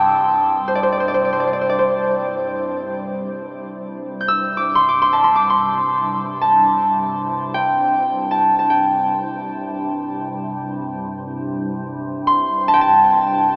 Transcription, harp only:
0.00 1.24 G5 medium
0.00 0.89 A5 medium
0.00 0.63 C6 medium
0.00 0.43 D6 medium
0.00 0.25 E6 medium
0.68 0.83 C5 medium
0.75 0.92 D5 medium
0.83 1.00 C5 medium
0.92 1.08 D5 medium
1.00 1.14 C5 medium
1.08 1.24 D5 soft
1.14 1.32 C5 soft
1.25 1.40 D5 medium
1.33 1.47 C5 medium
1.40 1.53 D5 medium
1.47 1.61 C5 soft
1.53 1.69 D5 soft
1.61 1.78 C5 medium
1.69 3.54 D5 soft
1.79 3.77 C5 medium
4.21 5.26 G6 medium
4.28 5.42 E6 medium
4.57 4.88 D6 medium
4.75 5.01 C6 medium
4.89 5.35 D6 medium
5.02 5.23 C6 medium
5.13 6.41 A5 medium
5.24 5.49 C6 medium
5.36 6.57 D6 medium
5.50 6.80 C6 medium
6.41 7.86 A5 medium
7.54 8.70 G5 medium
8.31 8.58 A5 medium
8.59 10.04 A5 soft
8.70 10.47 G5 medium
12.27 13.56 C6 medium
12.68 12.81 A5 medium
12.74 13.56 G5 medium
12.81 13.56 A5 medium

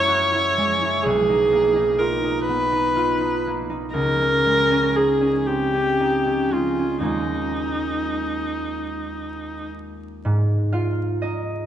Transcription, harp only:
0.00 1.08 F#2 soft
0.00 0.56 G#3 soft
0.00 1.51 A#3 soft
0.00 0.32 E4 soft
0.08 0.48 F#4 soft
0.33 0.82 E4 soft
0.58 1.08 G#3 soft
0.84 1.09 E4 soft
1.05 3.99 B1 soft
1.29 1.75 D#4 soft
1.53 3.46 A#3 soft
1.76 2.22 D#4 soft
2.00 2.40 F4 soft
2.24 2.71 D#4 soft
2.48 3.99 B3 soft
2.72 3.19 D#4 soft
2.96 3.37 F4 soft
3.20 3.68 D#4 soft
3.47 3.99 A#3 soft
3.70 3.98 D#4 soft
3.94 7.09 C#2 soft
4.21 4.70 C#4 soft
4.46 6.51 G#3 soft
4.71 5.20 C#4 soft
4.96 5.39 D#4 soft
5.21 5.73 C#4 soft
5.48 7.10 C4 soft
5.74 6.25 C#4 soft
6.00 6.44 D#4 soft
6.26 6.78 C#4 soft
6.52 7.01 G#3 soft
6.79 7.02 C#4 soft
7.00 10.27 D#2 soft
7.00 10.92 G#3 soft
7.00 10.93 A#3 soft
7.00 10.29 C#4 soft
7.05 10.29 F4 soft
10.25 11.66 G#2 soft
10.73 11.66 F4 soft
10.73 11.59 F5 soft
11.22 11.66 D#4 soft
11.22 11.66 D#5 soft

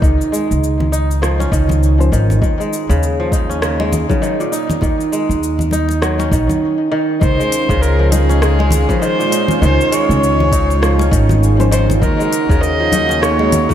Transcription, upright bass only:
0.02 0.16 C#2 loud
0.51 1.49 C#2 medium
1.52 2.08 C#2 medium
2.12 2.37 G#1 medium
2.42 2.56 D#2 loud
2.89 4.04 D#2 medium
4.82 4.96 D#2 loud
5.29 6.28 D#2 medium
6.32 6.46 A#1 medium
7.22 7.36 C#2 loud
7.69 8.84 C#2 medium
9.62 9.76 C#2 loud
10.09 11.08 C#2 medium
11.12 11.98 G#1 medium
12.02 12.16 D#2 loud
12.49 13.64 D#2 medium

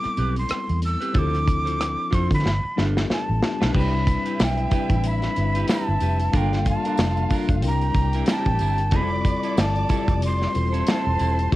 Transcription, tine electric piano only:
0.00 1.17 G3 medium
0.00 1.16 B3 medium
0.00 1.14 C4 medium
0.00 1.15 E4 medium
0.00 1.17 A4 medium
1.13 1.95 F3 medium
1.13 1.95 C4 medium
1.13 1.95 D4 medium
1.13 1.95 E4 medium
1.13 1.22 G4 medium
1.22 1.99 A4 loud
2.11 2.44 F3 medium
2.11 2.44 C4 medium
2.11 2.44 D4 medium
2.11 2.45 E4 medium
2.11 2.45 A4 medium
2.76 3.31 G3 medium
2.76 3.31 B3 medium
2.76 3.31 D4 medium
2.76 3.32 F4 medium
2.76 2.85 G4 medium
2.85 3.35 A4 medium
3.41 3.69 G3 medium
3.41 3.69 B3 medium
3.41 3.69 D4 medium
3.41 3.69 F4 medium
3.41 3.69 G4 medium
3.74 4.54 G3 loud
3.74 4.54 C4 medium
3.74 4.55 D4 medium
3.74 4.55 E4 medium
3.74 4.55 B4 loud
4.70 5.25 G3 medium
4.70 5.25 C4 medium
4.70 5.26 D4 medium
4.70 5.26 E4 medium
4.70 5.26 B4 medium
5.36 6.17 G3 medium
5.36 6.17 C4 medium
5.36 6.17 D4 medium
5.36 6.17 E4 medium
5.36 6.18 B4 medium
6.32 6.73 G3 loud
6.32 6.74 A#3 medium
6.32 6.74 D4 medium
6.32 6.74 F4 medium
6.32 6.74 A4 loud
6.84 7.22 G3 medium
6.84 7.23 A#3 medium
6.84 7.23 D4 medium
6.84 7.23 F4 medium
6.84 7.23 A4 medium
7.29 7.61 G3 medium
7.29 7.63 A#3 medium
7.29 7.62 D4 medium
7.29 7.63 F4 medium
7.29 7.63 A4 medium
7.62 8.68 G3 medium
7.62 8.69 C4 medium
7.62 8.69 D4 medium
7.62 8.69 E4 medium
7.62 8.69 A#4 medium
8.92 9.73 G3 loud
8.92 9.73 C4 medium
8.92 9.73 E4 medium
8.92 9.74 F4 medium
8.92 9.74 A4 loud
9.89 10.44 G3 medium
9.89 10.44 C4 medium
9.89 10.44 E4 medium
9.89 10.44 F4 medium
9.89 10.45 G4 medium
10.54 11.35 G3 medium
10.54 11.35 C4 medium
10.54 11.35 E4 medium
10.54 11.36 F4 medium
10.54 11.36 A4 medium
11.52 11.56 A3 loud
11.52 11.56 C4 medium
11.52 11.56 E4 medium

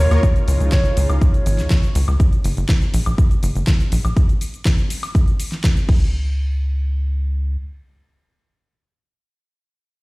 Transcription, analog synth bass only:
0.11 0.20 D#2 medium
0.48 0.57 C#2 medium
0.60 0.69 C#2 medium
0.97 1.06 C#2 loud
1.10 1.18 C#2 medium
1.46 1.60 G#1 loud
1.59 1.67 C#2 medium
1.95 2.04 C#2 loud
2.08 2.17 C#2 medium
2.44 2.54 F#1 medium
2.57 2.66 F#1 medium
2.94 3.03 A#1 loud
3.06 3.15 A#1 medium
3.43 3.52 F#1 loud
3.56 3.64 F#1 medium
3.92 4.01 A#1 loud
4.05 4.13 A#1 medium
5.89 7.57 C#2 loud

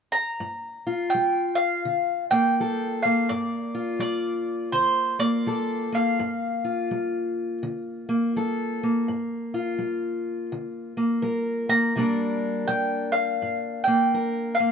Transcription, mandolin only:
0.12 1.10 A#5 loud
1.10 1.55 G5 medium
1.55 2.24 F5 medium
2.31 2.98 G5 medium
3.03 3.30 F5 medium
3.29 3.99 D5 medium
4.00 4.69 D5 medium
4.72 5.19 C5 medium
5.20 5.94 D5 medium
5.95 8.06 F5 medium
11.70 12.65 A#5 medium
12.68 13.11 G5 medium
13.12 13.83 F5 medium
13.84 14.54 G5 medium
14.55 14.72 F5 medium

